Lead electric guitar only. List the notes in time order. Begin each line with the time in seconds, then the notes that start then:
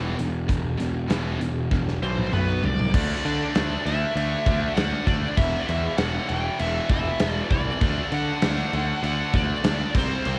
2.03 C5
2.33 B4
2.65 D5
3.26 D5
3.86 E5
4.75 F#5
5.06 D5
5.37 E5
5.60 D5
5.67 E5
5.98 F#5
6.29 G5
6.60 E5
6.91 E5
7.35 D5
7.52 D5
8.13 F#5
9.05 F#5
9.36 D5
9.98 C5